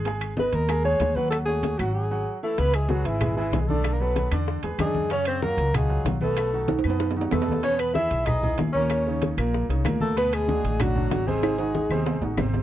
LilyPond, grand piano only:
\new Staff \with { instrumentName = "Grand piano" } { \time 4/4 \key gis \minor \tempo 4 = 190 <gis gis' gis''>4 <b b' dis''>4 <gis gis' gis''>8 <gis gis' gis''>4 <fis fis' fis''>8~ | <fis fis' fis''>8 <a fis' cis''>4 <fis fis' fis''>4 <fis fis' fis''>4 <e e' e''>8 | \key cis \minor <e e' e''>4 <gis gis' b'>4 <gis gis' b'>8 <gis gis' b'>4 <d d' d''>8~ | <d d' d''>8 <fis fis' a'>4 <d d' d''>4 <gis gis' b'>8 <d d' d''>4 |
<cis cis' cis''>4 <fis eis' fis'>4 <eis eis' fis'>8 <fis eis' fis'>4 <b, b b'>8~ | <b, b b'>8 <dis dis' fis'>4 <b, b b'>4 <dis dis' fis'>8 <b, b b'>4 | <b, b b'>4 <e e' gis'>4 <e e' gis'>8 <e e' gis'>4 <ais, ais ais'>8~ | <ais, ais ais'>8 <cis cis' dis'>4 <ais, ais ais'>4 <cis cis' dis'>8 <ais, ais ais'>4 |
<b, b b'>4 <d d' fis'>4 <d d' fis'>8 <d d' fis'>4 <bis, bis bis'>8~ | <bis, bis bis'>8 <dis dis' fis'>4 <bis, bis bis'>4 <dis dis' fis'>8 <bis, bis bis'>4 | }